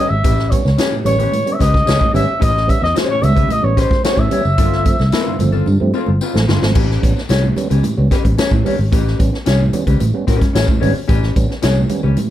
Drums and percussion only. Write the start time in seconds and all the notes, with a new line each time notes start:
0.24 kick, closed hi-hat, tambourine
0.38 snare, tambourine
0.51 kick, closed hi-hat, tambourine, muted conga
0.66 snare, tambourine
0.78 snare, closed hi-hat, tambourine
1.05 closed hi-hat, tambourine, high conga, low conga
1.19 closed hi-hat, tambourine, low conga
1.32 closed hi-hat, tambourine, high conga
1.47 closed hi-hat
1.60 kick, snare, closed hi-hat, tambourine, muted conga
1.73 kick, snare, high conga
1.87 snare, closed hi-hat, tambourine
2.01 kick
2.14 closed hi-hat, tambourine, low conga
2.41 kick, closed hi-hat, tambourine, muted conga
2.57 snare
2.69 kick, closed hi-hat, tambourine
2.84 snare
2.95 snare, closed hi-hat, tambourine, muted conga
3.22 closed hi-hat, tambourine, high conga, low conga
3.36 kick, closed hi-hat, tambourine, low conga
3.49 closed hi-hat, tambourine, muted conga, high conga
3.77 kick, snare, closed hi-hat, tambourine
3.90 kick, snare, high conga
4.04 snare, closed hi-hat, tambourine, muted conga
4.17 kick
4.31 closed hi-hat, tambourine, low conga
4.45 tambourine
4.58 kick, closed hi-hat, tambourine, muted conga
4.72 snare
4.85 kick, closed hi-hat, tambourine, muted conga
4.99 snare, tambourine
5.12 snare, closed hi-hat, tambourine
5.39 closed hi-hat, tambourine, high conga, low conga
5.53 tambourine, low conga
5.66 tambourine, muted conga, high conga
5.93 tambourine, muted conga
6.06 high conga
6.21 tambourine, muted conga
6.34 snare, high conga
6.49 snare, tambourine, low conga
6.63 snare
6.75 kick, crash, tambourine, muted conga
6.91 snare
7.02 kick, closed hi-hat, tambourine, muted conga
7.16 snare, tambourine
7.29 snare, closed hi-hat, tambourine, muted conga
7.56 closed hi-hat, tambourine, muted conga, high conga, low conga
7.70 closed hi-hat, tambourine, low conga
7.83 closed hi-hat, tambourine, muted conga, high conga
8.11 kick, snare, closed hi-hat, tambourine
8.25 kick, closed hi-hat, high conga
8.38 snare, closed hi-hat, tambourine
8.51 kick
8.66 open hi-hat, tambourine, muted conga, low conga
8.93 kick, closed hi-hat, tambourine
9.06 snare, tambourine
9.19 kick, closed hi-hat, tambourine
9.34 snare
9.46 snare, closed hi-hat, tambourine, muted conga
9.73 closed hi-hat, tambourine, muted conga, high conga, low conga
9.87 kick, closed hi-hat, tambourine, low conga
10.00 closed hi-hat, tambourine, high conga
10.28 kick, snare, closed hi-hat, tambourine
10.41 kick, snare, closed hi-hat, high conga
10.55 snare, closed hi-hat, tambourine, muted conga
10.68 kick
10.82 open hi-hat, tambourine, muted conga, low conga
10.96 tambourine
11.09 kick, closed hi-hat, tambourine, muted conga
11.23 snare, tambourine
11.36 kick, closed hi-hat, tambourine, muted conga
11.51 snare
11.62 snare, closed hi-hat, tambourine, muted conga
11.89 closed hi-hat, tambourine, muted conga, high conga, low conga
12.03 low conga
12.17 closed hi-hat, tambourine, high conga